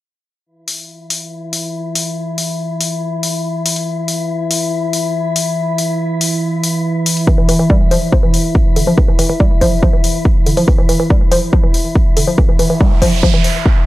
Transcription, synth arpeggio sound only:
7.27 7.33 E3 medium
7.38 7.46 E3 medium
7.49 7.57 E3 loud
7.59 7.65 E3 medium
7.70 7.78 G3 loud
7.91 7.99 F3 loud
8.12 8.18 F3 medium
8.23 8.28 E3 medium
8.76 8.80 D3 medium
8.87 8.92 F3 medium
8.98 9.03 E3 medium
9.08 9.16 E3 medium
9.19 9.27 E3 loud
9.30 9.35 E3 medium
9.40 9.48 G3 loud
9.61 9.69 F3 loud
9.83 9.88 F3 medium
9.93 9.99 E3 medium
10.46 10.50 D3 medium
10.57 10.63 F3 medium
10.68 10.73 E3 medium
10.78 10.86 E3 medium
10.89 10.97 E3 loud
11.00 11.05 E3 medium
11.10 11.18 G3 loud
11.32 11.40 F3 loud
11.53 11.58 F3 medium
11.64 11.69 E3 medium
12.17 12.20 D3 medium
12.27 12.33 F3 medium
12.38 12.43 E3 medium
12.49 12.57 E3 medium
12.59 12.67 E3 loud
12.70 12.75 E3 medium
12.80 12.89 G3 loud
13.02 13.10 F3 loud
13.23 13.28 F3 medium
13.34 13.39 E3 medium

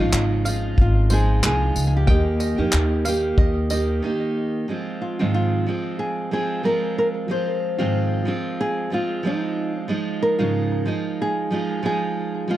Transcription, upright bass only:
0.00 0.12 A#1 medium
0.13 0.74 G#1 loud
0.78 1.39 G#1 loud
1.43 1.73 C2 loud
1.76 2.06 C#2 medium
2.08 2.55 D#2 loud
2.59 2.72 F2 medium
2.73 3.34 D#2 medium
3.38 3.99 D#2 loud

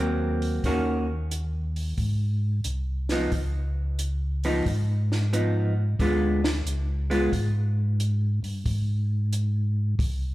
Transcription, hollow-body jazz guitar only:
0.00 0.64 F#3 soft
0.00 0.65 A#3 medium
0.00 0.65 C4 medium
0.65 1.05 D#3 soft
0.65 1.05 A#3 medium
0.65 1.05 C#4 medium
0.65 1.05 F#4 medium
3.12 3.31 F3 medium
3.12 3.31 B3 medium
3.12 3.31 D#4 medium
4.45 4.64 F3 medium
4.45 4.64 B3 medium
4.45 4.65 D#4 medium
5.33 5.73 F3 soft
5.33 5.73 B3 medium
5.33 5.74 D#4 medium
6.00 6.40 D3 medium
6.00 6.40 G#3 medium
6.00 6.40 B3 medium
6.00 6.41 F4 medium
7.10 7.30 G#3 medium
7.10 7.31 B3 medium
7.10 7.31 F4 medium

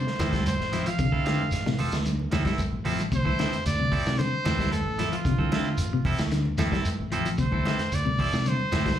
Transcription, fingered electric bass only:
0.19 0.56 D2 medium
0.59 0.84 A1 medium
0.99 1.48 D3 medium
1.52 1.77 A1 medium
1.92 2.29 D2 medium
2.33 2.45 D2 medium
2.59 muted fingered electric bass stroke soft
2.72 3.09 A1 medium
3.12 3.37 D2 medium
3.66 3.90 D2 loud
4.06 4.30 C3 medium
4.46 4.82 D2 medium
4.86 5.10 A1 medium
5.25 5.74 D3 loud
5.79 6.03 A1 medium
6.20 6.56 D2 medium
6.59 6.71 D2 medium
6.87 muted fingered electric bass stroke soft
7.00 7.36 A1 medium
7.39 7.63 D2 medium
7.93 8.17 D2 medium
8.33 8.57 C3 medium
8.74 8.99 D2 medium

